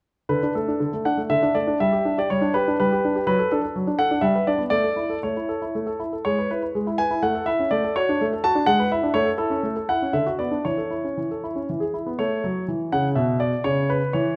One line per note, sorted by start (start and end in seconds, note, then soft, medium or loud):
0.29 0.42 D3 soft
0.29 0.52 B4 medium
0.43 0.56 D4 soft
0.55 0.69 A3 soft
0.55 1.05 A4 soft
0.68 0.81 D4 soft
0.80 0.92 D3 soft
0.93 1.06 A3 soft
1.05 1.18 D4 soft
1.05 1.20 F#5 medium
1.17 1.31 A3 soft
1.30 1.42 D3 soft
1.30 1.55 E5 medium
1.43 1.56 D4 soft
1.55 1.68 A3 soft
1.55 1.77 D5 medium
1.67 1.80 D4 soft
1.80 1.92 G3 soft
1.80 2.17 E5 medium
1.93 2.05 G4 soft
2.05 2.18 D4 soft
2.18 2.30 G4 soft
2.18 2.30 D5 medium
2.30 2.42 G3 soft
2.30 2.52 C#5 medium
2.41 2.54 D4 soft
2.54 2.67 G4 soft
2.54 2.76 B4 medium
2.68 2.80 D4 soft
2.80 2.91 G3 soft
2.80 3.23 B4 medium
2.92 3.04 G4 soft
3.05 3.16 D4 soft
3.15 3.27 G4 soft
3.27 3.38 F#3 soft
3.27 3.50 B4 medium
3.39 3.50 A4 soft
3.52 3.64 D4 soft
3.52 3.61 A4 medium
3.62 3.75 A4 soft
3.76 3.87 F#3 soft
3.87 4.00 D4 soft
3.99 4.11 A4 soft
3.99 4.23 F#5 medium
4.11 4.23 D4 soft
4.21 4.34 G3 medium
4.21 4.47 E5 medium
4.35 4.48 B4 soft
4.47 4.61 D4 soft
4.47 4.62 D5 medium
4.58 4.72 B3 soft
4.70 4.84 A3 soft
4.70 5.18 D5 medium
4.84 4.98 A4 soft
4.96 5.10 E4 soft
5.10 5.23 A4 soft
5.23 5.36 A3 soft
5.23 5.99 C#5 soft
5.37 5.49 E4 soft
5.49 5.62 A4 soft
5.62 5.75 E4 soft
5.75 5.87 A3 soft
5.87 6.00 A4 soft
6.00 6.13 E4 soft
6.13 6.25 A4 soft
6.25 6.37 G#3 soft
6.25 6.50 C#5 medium
6.39 6.49 B4 soft
6.51 6.64 E4 soft
6.51 6.62 B4 soft
6.63 6.76 B4 soft
6.75 6.87 G#3 soft
6.87 7.00 E4 soft
6.98 7.12 B4 soft
6.98 7.23 G#5 medium
7.11 7.23 E4 soft
7.23 7.35 A3 soft
7.23 7.47 F#5 medium
7.35 7.48 A4 soft
7.46 7.60 E4 soft
7.46 7.68 E5 medium
7.60 7.72 C#4 soft
7.71 7.83 A3 soft
7.71 7.96 D5 medium
7.84 7.97 A4 soft
7.96 8.09 F#4 soft
7.96 8.25 C#5 medium
8.09 8.21 D4 soft
8.21 8.32 A3 soft
8.33 8.45 A4 soft
8.44 8.57 F#4 soft
8.44 8.68 A5 medium
8.55 8.68 D4 soft
8.66 8.79 G#3 medium
8.66 8.89 F#5 medium
8.79 8.93 B4 soft
8.92 9.05 E4 soft
8.92 9.14 E5 medium
9.03 9.16 D4 soft
9.14 9.27 A3 medium
9.14 9.29 C#5 medium
9.26 9.37 A4 soft
9.38 9.52 E4 soft
9.38 9.75 A4 medium
9.50 9.64 C#4 soft
9.63 9.76 A3 soft
9.76 9.90 A4 soft
9.89 10.02 E4 soft
9.89 10.14 F#5 medium
10.02 10.14 C#4 soft
10.13 10.26 D3 soft
10.13 10.29 E5 soft
10.26 10.40 F#4 soft
10.39 10.53 B3 soft
10.39 10.65 D5 soft
10.51 10.65 D4 soft
10.65 10.78 E3 soft
10.65 11.65 C#5 soft
10.78 10.92 A4 soft
10.91 11.05 E4 soft
11.04 11.18 C#4 soft
11.17 11.30 E3 soft
11.31 11.45 A4 soft
11.44 11.57 E4 soft
11.56 11.69 C#4 soft
11.69 11.82 E3 soft
11.80 11.95 G#4 soft
11.94 12.08 E4 soft
12.06 12.19 B3 soft
12.19 12.43 A3 soft
12.19 12.63 C#5 medium
12.44 12.68 F#3 soft
12.68 12.92 E3 soft
12.92 13.16 C#3 soft
12.92 13.07 F#5 medium
13.15 13.51 B2 soft
13.15 13.38 E5 soft
13.40 13.65 D5 medium
13.64 14.00 C#3 soft
13.64 13.90 C#5 medium
13.90 14.12 B4 medium
14.13 14.36 E3 medium
14.13 14.36 C#5 medium